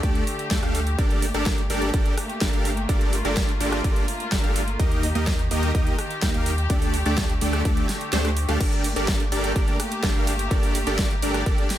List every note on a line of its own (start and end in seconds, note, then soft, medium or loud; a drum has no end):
0.00 0.22 D2 loud
0.00 0.97 D3 medium
0.00 0.97 A3 medium
0.00 0.24 A3 medium
0.00 0.24 D4 medium
0.00 2.85 G4 medium
0.00 0.24 G4 medium
0.00 0.24 A4 medium
0.00 0.24 D5 loud
0.00 kick loud
0.00 closed hi-hat medium
0.15 closed hi-hat soft
0.27 open hi-hat loud
0.39 closed hi-hat soft
0.51 0.60 D2 loud
0.51 0.61 A3 medium
0.51 0.61 D4 medium
0.51 0.61 G4 medium
0.51 0.61 A4 medium
0.51 0.61 G5 loud
0.51 kick loud
0.51 snare loud
0.51 closed hi-hat medium
0.63 0.96 D2 loud
0.63 0.80 A3 medium
0.63 0.80 D4 medium
0.63 0.80 G4 medium
0.63 0.80 A4 medium
0.63 0.80 F5 loud
0.63 cross-stick medium
0.63 closed hi-hat soft
0.75 open hi-hat loud
0.87 closed hi-hat soft
0.98 1.32 G1 loud
0.98 4.76 A3 medium
0.98 6.66 A#3 medium
0.98 1.25 D4 medium
0.98 1.25 G4 medium
0.98 1.25 A4 medium
0.98 1.25 A#4 medium
0.98 1.25 D5 medium
0.98 kick loud
0.98 closed hi-hat medium
1.11 closed hi-hat soft
1.22 open hi-hat loud
1.34 1.68 G1 loud
1.34 1.61 D4 medium
1.34 1.61 G4 medium
1.34 1.61 A4 medium
1.34 1.61 A#4 medium
1.34 1.61 D5 medium
1.34 closed hi-hat soft
1.46 kick loud
1.46 snare loud
1.46 closed hi-hat medium
1.58 closed hi-hat soft
1.70 1.91 G1 loud
1.70 1.90 D4 medium
1.70 1.90 G4 medium
1.70 1.90 A4 medium
1.70 1.90 A#4 medium
1.70 1.90 D5 medium
1.70 open hi-hat loud
1.82 closed hi-hat soft
1.94 2.12 G1 loud
1.94 2.15 D4 medium
1.94 2.15 G4 medium
1.94 2.15 A4 medium
1.94 2.15 A#4 medium
1.94 2.15 D5 loud
1.94 kick loud
1.94 closed hi-hat medium
2.06 closed hi-hat soft
2.18 cross-stick medium
2.18 open hi-hat loud
2.29 closed hi-hat soft
2.41 2.51 G1 loud
2.41 2.52 D4 medium
2.41 2.52 G4 medium
2.41 2.52 A4 medium
2.41 2.52 A#4 medium
2.41 2.52 G5 loud
2.41 kick loud
2.41 snare loud
2.41 closed hi-hat medium
2.53 2.87 G1 medium
2.53 2.70 D4 medium
2.53 2.70 G4 medium
2.53 2.70 A4 medium
2.53 2.70 A#4 medium
2.53 2.70 F5 loud
2.53 closed hi-hat soft
2.65 open hi-hat loud
2.77 closed hi-hat soft
2.89 3.22 G1 loud
2.89 3.16 D4 medium
2.89 4.78 F4 medium
2.89 3.16 G4 medium
2.89 3.16 A4 medium
2.89 3.16 A#4 medium
2.89 3.16 D5 medium
2.89 kick loud
2.89 closed hi-hat loud
3.01 closed hi-hat soft
3.13 open hi-hat loud
3.25 3.58 G1 loud
3.25 3.51 D4 medium
3.25 3.51 G4 medium
3.25 3.52 A4 medium
3.25 3.52 A#4 medium
3.25 3.51 D5 medium
3.25 closed hi-hat soft
3.37 kick loud
3.37 snare loud
3.37 closed hi-hat loud
3.49 closed hi-hat soft
3.60 3.82 G1 loud
3.60 3.81 D4 medium
3.60 3.81 G4 medium
3.60 3.81 A4 medium
3.60 3.81 A#4 medium
3.60 3.81 D5 medium
3.60 open hi-hat loud
3.72 cross-stick medium
3.72 closed hi-hat soft
3.84 4.03 G1 loud
3.84 4.05 D4 medium
3.84 4.05 G4 medium
3.84 4.05 A4 medium
3.84 4.05 D5 loud
3.84 kick loud
3.84 closed hi-hat loud
3.96 closed hi-hat soft
4.08 open hi-hat loud
4.20 closed hi-hat soft
4.32 4.41 G1 loud
4.32 4.42 D4 loud
4.32 4.42 G4 medium
4.32 4.42 A4 medium
4.32 4.42 A#4 medium
4.32 4.42 G5 loud
4.32 kick loud
4.32 snare loud
4.32 closed hi-hat medium
4.44 4.77 G1 loud
4.44 4.61 D4 medium
4.44 4.60 G4 medium
4.44 4.61 A4 medium
4.44 4.60 A#4 medium
4.44 4.61 F5 loud
4.44 closed hi-hat soft
4.56 open hi-hat loud
4.68 closed hi-hat soft
4.79 5.13 D#2 medium
4.79 6.68 D#3 medium
4.79 5.06 A#3 medium
4.79 5.06 D#4 medium
4.79 8.57 G4 medium
4.79 5.06 G4 medium
4.79 5.06 A#4 medium
4.79 5.06 D#5 medium
4.79 kick loud
4.79 closed hi-hat loud
4.92 closed hi-hat soft
5.03 open hi-hat loud
5.15 5.49 D#2 loud
5.15 5.42 A#3 medium
5.15 5.42 D#4 medium
5.15 5.42 G4 medium
5.15 5.42 A#4 medium
5.15 5.42 D#5 medium
5.15 closed hi-hat soft
5.27 kick loud
5.27 snare loud
5.27 closed hi-hat loud
5.39 closed hi-hat soft
5.51 5.72 D#2 loud
5.51 5.71 A#3 medium
5.51 5.71 D#4 medium
5.51 5.71 G4 medium
5.51 5.71 A#4 medium
5.51 5.71 D#5 medium
5.51 open hi-hat loud
5.63 closed hi-hat soft
5.75 5.93 D#2 loud
5.75 5.96 A#3 medium
5.75 kick loud
5.75 closed hi-hat loud
5.87 closed hi-hat soft
5.99 cross-stick medium
5.99 open hi-hat loud
6.11 closed hi-hat soft
6.22 6.32 D#2 loud
6.22 6.33 A#3 loud
6.22 6.33 D#4 medium
6.22 6.33 G4 medium
6.22 6.33 A#4 medium
6.22 6.33 G5 loud
6.22 kick loud
6.22 snare loud
6.22 closed hi-hat loud
6.34 6.68 D#2 loud
6.34 6.51 A#3 medium
6.34 6.51 D#4 medium
6.34 6.51 G4 medium
6.34 6.51 A#4 medium
6.34 6.51 F5 loud
6.34 closed hi-hat soft
6.46 open hi-hat loud
6.58 closed hi-hat soft
6.70 7.03 D2 loud
6.70 8.59 D3 medium
6.70 6.97 A3 medium
6.70 8.59 A3 medium
6.70 6.97 D4 medium
6.70 6.97 G4 medium
6.70 6.97 A4 medium
6.70 6.97 D5 medium
6.70 kick loud
6.70 closed hi-hat loud
6.82 open hi-hat medium
6.94 open hi-hat loud
7.06 7.39 D2 loud
7.06 7.32 A3 medium
7.06 7.32 D4 medium
7.06 7.32 G4 medium
7.06 7.32 A4 medium
7.06 7.32 D5 medium
7.06 closed hi-hat soft
7.18 kick loud
7.18 snare loud
7.18 closed hi-hat loud
7.29 closed hi-hat soft
7.41 7.63 D2 loud
7.41 7.62 A3 medium
7.41 7.62 D4 medium
7.41 7.62 G4 medium
7.41 7.62 A4 medium
7.41 7.62 D5 medium
7.41 open hi-hat loud
7.53 cross-stick medium
7.53 closed hi-hat soft
7.65 7.84 D2 loud
7.65 7.86 A3 medium
7.65 7.86 D4 medium
7.65 7.86 G4 medium
7.65 7.86 A4 medium
7.65 7.86 D5 loud
7.65 kick loud
7.65 closed hi-hat loud
7.77 closed hi-hat soft
7.89 snare medium
7.89 open hi-hat loud
8.01 closed hi-hat soft
8.13 8.46 D2 loud
8.13 8.30 A3 medium
8.13 8.30 D4 medium
8.13 8.30 G4 medium
8.13 8.30 A4 medium
8.13 8.30 C5 loud
8.13 snare loud
8.13 closed hi-hat loud
8.25 cross-stick medium
8.25 closed hi-hat soft
8.37 open hi-hat loud
8.48 8.58 D2 loud
8.48 8.59 A3 medium
8.48 8.59 D4 medium
8.48 8.59 G4 medium
8.48 8.59 A4 medium
8.48 8.59 F5 loud
8.48 closed hi-hat soft
8.60 8.94 G1 loud
8.60 11.78 A3 medium
8.60 11.78 A#3 medium
8.60 8.87 D4 medium
8.60 8.87 G4 medium
8.60 11.78 G4 medium
8.60 8.87 A4 medium
8.60 8.87 A#4 medium
8.60 8.87 D5 medium
8.60 kick loud
8.60 closed hi-hat medium
8.60 crash loud
8.72 closed hi-hat soft
8.84 open hi-hat loud
8.84 ride medium
8.96 9.30 G1 loud
8.96 9.23 D4 medium
8.96 9.23 G4 medium
8.96 9.23 A4 medium
8.96 9.23 A#4 medium
8.96 9.23 D5 medium
8.96 closed hi-hat medium
9.08 kick loud
9.08 snare loud
9.08 closed hi-hat medium
9.20 closed hi-hat soft
9.32 9.53 G1 medium
9.32 9.52 D4 medium
9.32 9.52 G4 medium
9.32 9.52 A4 medium
9.32 9.52 A#4 medium
9.32 9.52 D5 medium
9.32 open hi-hat loud
9.32 ride medium
9.44 closed hi-hat medium
9.56 9.74 G1 loud
9.56 9.77 D4 medium
9.56 9.77 G4 medium
9.56 9.77 A4 medium
9.56 9.77 A#4 medium
9.56 9.77 D5 loud
9.56 kick loud
9.56 closed hi-hat medium
9.68 closed hi-hat soft
9.80 cross-stick medium
9.80 open hi-hat loud
9.80 ride medium
9.92 closed hi-hat medium
10.03 10.13 G1 loud
10.03 10.14 D4 loud
10.03 10.13 G4 medium
10.03 10.14 A4 medium
10.03 10.14 A#4 medium
10.03 10.14 G5 loud
10.03 kick loud
10.03 snare loud
10.03 closed hi-hat medium
10.15 10.49 G1 loud
10.15 10.32 D4 medium
10.15 10.32 G4 medium
10.15 10.32 A4 medium
10.15 10.32 A#4 medium
10.15 10.32 F5 loud
10.27 open hi-hat loud
10.27 ride medium
10.39 closed hi-hat medium
10.51 10.84 G1 loud
10.51 10.78 D4 medium
10.51 10.78 G4 medium
10.51 10.78 A4 medium
10.51 10.78 A#4 medium
10.51 10.78 D5 medium
10.51 kick loud
10.51 closed hi-hat medium
10.63 open hi-hat medium
10.75 open hi-hat loud
10.75 ride medium
10.87 11.20 G1 loud
10.87 11.13 D4 medium
10.87 11.13 G4 medium
10.87 11.13 A4 medium
10.87 11.13 A#4 medium
10.87 11.13 D5 medium
10.87 closed hi-hat medium
10.99 kick loud
10.99 snare loud
10.99 closed hi-hat medium
11.11 closed hi-hat soft
11.22 11.44 G1 loud
11.22 11.43 D4 medium
11.22 11.43 G4 medium
11.22 11.43 A4 medium
11.22 11.43 A#4 medium
11.22 11.43 D5 medium
11.22 open hi-hat loud
11.22 ride medium
11.34 cross-stick medium
11.34 closed hi-hat medium
11.46 11.65 G1 loud
11.46 11.67 D4 medium
11.46 11.67 G4 medium
11.46 11.67 A4 medium
11.46 11.67 A#4 medium
11.46 11.67 D5 loud
11.46 kick loud
11.46 closed hi-hat medium
11.58 closed hi-hat soft
11.70 snare medium
11.70 open hi-hat loud
11.70 ride medium